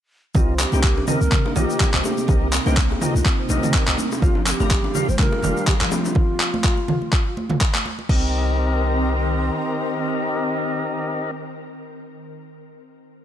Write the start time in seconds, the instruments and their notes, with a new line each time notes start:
0.35 808-style bass C2, ambient pad C3 A#3 D#4, marimba C4, tonewheel organ C4 D#4 G4 A#4 D#5, bansuri G4, kick, low conga, shaker
0.40 bansuri F4
0.49 marimba C5
0.59 bansuri G4, clap, low bongo, muted conga, shaker
0.72 808-style bass C2, marimba C4, tonewheel organ C4 D#4 G4 A#4 G5, high bongo, high conga, shaker
0.83 marimba A#4, kick, clap, shaker
0.97 high bongo, low bongo, muted conga
1.08 tonewheel organ C4 D#4 G4 A#4 D#5, marimba C4, bansuri C5, mid tom, low conga, shaker
1.12 bansuri A#4
1.21 808-style bass C2, marimba C4, high conga, shaker
1.32 kick, clap, mid tom, muted conga, high conga, shaker
1.45 marimba A#3, high bongo, low bongo
1.56 808-style bass A#1, tonewheel organ C4 D#4 G4 A#4 D#5, marimba F4, bansuri G4, high conga, low conga, shaker
1.70 shaker
1.80 marimba C4, kick, clap, low bongo, muted conga, low conga, shaker
1.94 808-style bass C2, tonewheel organ C4 D#4 G4 A#4 D#5, marimba C5, clap
2.04 bansuri G4, high bongo, high conga, shaker
2.18 marimba C4, muted conga, shaker
2.28 808-style bass C2, tonewheel organ C4 D#4 G4 A#4 D#5, marimba A#4, kick, low bongo, low conga, shaker
2.52 marimba C4, clap, muted conga, shaker
2.66 808-style bass C2, marimba C4, tonewheel organ C4 D#4 G4 A#4 G5, low bongo, high conga, shaker
2.77 kick, clap, shaker
2.91 marimba A#3, high bongo, muted conga
3.01 tonewheel organ C4 D#4 G4 A#4 D#5, marimba F4, mid tom, low conga, shaker
3.15 808-style bass C2, low bongo, high conga, shaker
3.25 marimba C4, kick, clap, muted conga, shaker
3.39 marimba C5
3.49 808-style bass A#1, tonewheel organ C4 D#4 G4 A#4 D#5, low bongo, high conga, shaker
3.63 marimba C4, mid tom, high conga, low conga, shaker
3.74 marimba A#4, kick, clap, shaker
3.87 808-style bass C2, tonewheel organ C4 D#4 G4 A#4 D#5, clap, high conga
3.98 marimba C4, low bongo, high conga, shaker
4.12 marimba C4, high bongo, muted conga, shaker
4.22 808-style bass G1, ambient pad F3 G4, tonewheel organ D4 F4 G4 A#4 F5, bansuri F4, kick, low conga, shaker
4.35 marimba F3, low bongo
4.46 marimba C4, bansuri A#4, clap, muted conga, shaker
4.51 bansuri G4
4.60 808-style bass G1, tonewheel organ D4 F4 G4 A#4 A#5, high bongo, high conga, shaker
4.70 marimba G3, kick, clap, shaker
4.84 marimba G4, high bongo, low bongo, muted conga
4.95 tonewheel organ D4 F4 G4 A#4 F5, mid tom, low conga, shaker
5.09 808-style bass G1, marimba G3, bansuri C5, high conga, shaker
5.18 marimba F4, bansuri A#4, kick, clap, mid tom, low bongo, muted conga, high conga, shaker
5.33 high bongo
5.42 808-style bass F1, marimba G3, tonewheel organ D4 F4 G4 A#4 F5, high conga, low conga, shaker
5.57 marimba G3, shaker
5.67 bansuri G4, kick, clap, low bongo, muted conga, low conga, shaker
5.81 808-style bass G1, marimba F3, tonewheel organ D4 F4 G4 A#4 F5, clap
5.91 marimba C4, bansuri G4, high bongo, high conga, shaker
5.96 bansuri F4
6.05 low bongo, muted conga, shaker
6.15 kick, low conga
6.40 clap, muted conga
6.54 high conga
6.64 kick, clap
6.78 muted conga
6.88 mid tom, low conga
7.02 high conga
7.13 kick, clap, muted conga
7.37 high conga
7.49 mid tom, high conga, low conga
7.61 kick, clap
7.74 clap, high conga
7.86 high conga
7.99 muted conga
8.09 808-style bass C2, ambient pad D#3 C4 A#4, marimba C4, bansuri C4, tonewheel organ C4 D#4 G4 A#4 D#5, kick, crash